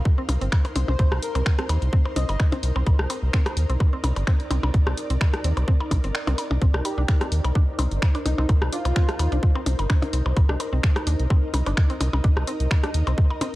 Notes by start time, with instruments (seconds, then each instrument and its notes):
Already playing: ambient pad D#4 A#4 C5
0.05 kick
0.18 synth arpeggio sound C4
0.29 analog synth bass C2, open hi-hat, percussion blips
0.41 analog synth bass G1, synth arpeggio sound C4, open hi-hat
0.52 finger snap, kick, percussion blips
0.65 open hi-hat, percussion blips
0.76 analog synth bass C2, synth arpeggio sound C4, open hi-hat, percussion blips
0.88 analog synth bass C2, digital synth lead C5, percussion blips
0.99 analog synth bass C2, synth arpeggio sound C4, digital synth lead C5, kick, closed hi-hat, percussion blips
1.12 analog synth bass C2, cross-stick, percussion blips
1.22 digital synth lead A#4, open hi-hat
1.35 analog synth bass C2, synth arpeggio sound C4, closed hi-hat, percussion blips
1.46 finger snap, kick
1.59 synth arpeggio sound C4, cross-stick, closed hi-hat
1.69 analog synth bass D#2, open hi-hat, percussion blips
1.82 analog synth bass C2, closed hi-hat
1.93 synth arpeggio sound C4, kick
2.06 percussion blips
2.16 analog synth bass C2, synth arpeggio sound C4, digital synth lead D#5, open hi-hat, percussion blips
2.29 analog synth bass G1, digital synth lead D#5, open hi-hat, percussion blips
2.40 finger snap, kick, percussion blips
2.52 synth arpeggio sound C4, open hi-hat, percussion blips
2.63 analog synth bass C2, open hi-hat
2.76 analog synth bass C2, synth arpeggio sound C4, percussion blips
2.87 analog synth bass C2, kick, closed hi-hat, percussion blips
2.99 analog synth bass C2, cross-stick
3.10 synth arpeggio sound C4, open hi-hat, percussion blips
3.23 analog synth bass C2
3.33 synth arpeggio sound C4, ambient pad D5, finger snap, kick
3.46 cross-stick, closed hi-hat, percussion blips
3.57 analog synth bass D#2, open hi-hat
3.70 analog synth bass C2, synth arpeggio sound C4, closed hi-hat
3.80 kick, percussion blips
3.93 synth arpeggio sound C4
4.04 analog synth bass C2, open hi-hat, percussion blips
4.16 analog synth bass G1, open hi-hat, percussion blips
4.27 synth arpeggio sound C4, finger snap, kick
4.40 open hi-hat
4.51 analog synth bass C2, synth arpeggio sound C4, open hi-hat, percussion blips
4.63 analog synth bass C2, percussion blips
4.74 analog synth bass C2, kick, closed hi-hat
4.87 analog synth bass C2, synth arpeggio sound C4, cross-stick, percussion blips
4.97 open hi-hat
5.10 analog synth bass C2, synth arpeggio sound C4, closed hi-hat
5.21 finger snap, kick, percussion blips
5.34 cross-stick, closed hi-hat
5.44 analog synth bass D#2, synth arpeggio sound C4, open hi-hat
5.57 analog synth bass C2, closed hi-hat, percussion blips
5.68 synth arpeggio sound C4, kick
5.80 percussion blips
5.91 analog synth bass C2, kick, open hi-hat, percussion blips
6.04 analog synth bass G1, synth arpeggio sound C4, open hi-hat
6.15 finger snap
6.27 analog synth bass C2, synth arpeggio sound C4, open hi-hat, percussion blips
6.38 open hi-hat, percussion blips
6.51 analog synth bass C2, percussion blips
6.62 analog synth bass C2, synth arpeggio sound C4, synth texture D#4 D#5, kick, closed hi-hat
6.74 analog synth bass C2, cross-stick, percussion blips
6.85 digital synth lead G4, open hi-hat, percussion blips
6.98 analog synth bass C2, synth arpeggio sound D4, digital synth lead G4
7.08 ambient pad C5, finger snap, kick, percussion blips
7.21 synth arpeggio sound C4, cross-stick, closed hi-hat
7.32 analog synth bass D#2, open hi-hat
7.45 analog synth bass C2, closed hi-hat, percussion blips
7.55 synth arpeggio sound D4, kick
7.79 analog synth bass C2, synth arpeggio sound C4, open hi-hat, percussion blips
7.91 analog synth bass G1, open hi-hat
8.02 finger snap, kick, percussion blips
8.15 synth arpeggio sound D4, open hi-hat, percussion blips
8.26 analog synth bass C2, digital synth lead D#4, open hi-hat, percussion blips
8.38 analog synth bass C2, synth arpeggio sound C4, digital synth lead D#4, percussion blips
8.49 analog synth bass C2, kick, closed hi-hat, percussion blips
8.62 analog synth bass C2, cross-stick, percussion blips
8.72 synth arpeggio sound D4, digital synth lead F4, open hi-hat
8.85 analog synth bass C2, closed hi-hat, percussion blips
8.96 synth arpeggio sound C4, finger snap, kick
9.09 cross-stick, closed hi-hat
9.19 analog synth bass D#2, open hi-hat, percussion blips
9.32 analog synth bass C2, synth arpeggio sound D4, closed hi-hat
9.43 kick
9.55 synth arpeggio sound C4, percussion blips
9.66 analog synth bass C2, open hi-hat, percussion blips
9.79 analog synth bass G1, open hi-hat, percussion blips
9.90 synth arpeggio sound D4, finger snap, kick, percussion blips
10.02 open hi-hat, percussion blips
10.13 analog synth bass C2, synth arpeggio sound C4, open hi-hat
10.26 analog synth bass C2, percussion blips
10.37 analog synth bass C2, kick, closed hi-hat, percussion blips
10.49 analog synth bass C2, synth arpeggio sound D4, cross-stick
10.60 open hi-hat, percussion blips
10.73 analog synth bass C2, synth arpeggio sound C4
10.83 ambient pad D#5, finger snap, kick
10.96 cross-stick, closed hi-hat, percussion blips
11.07 analog synth bass D#2, synth arpeggio sound D4, open hi-hat
11.20 analog synth bass C2, closed hi-hat
11.30 synth arpeggio sound C4, kick, percussion blips
11.54 analog synth bass C2, open hi-hat, percussion blips
11.66 analog synth bass G1, synth arpeggio sound D4, open hi-hat, percussion blips
11.77 finger snap, kick
11.90 synth arpeggio sound C4, open hi-hat
12.01 analog synth bass C2, open hi-hat, percussion blips
12.13 analog synth bass C2, percussion blips
12.24 analog synth bass C2, synth arpeggio sound D4, kick, closed hi-hat
12.37 analog synth bass C2, cross-stick, percussion blips
12.47 synth arpeggio sound C4, open hi-hat
12.60 analog synth bass C2, closed hi-hat
12.71 finger snap, kick, percussion blips
12.84 synth arpeggio sound D4, cross-stick, closed hi-hat
12.94 analog synth bass D#2, open hi-hat
13.07 analog synth bass C2, synth arpeggio sound C4, closed hi-hat, percussion blips
13.18 kick
13.30 percussion blips
13.41 synth arpeggio sound C4, open hi-hat, percussion blips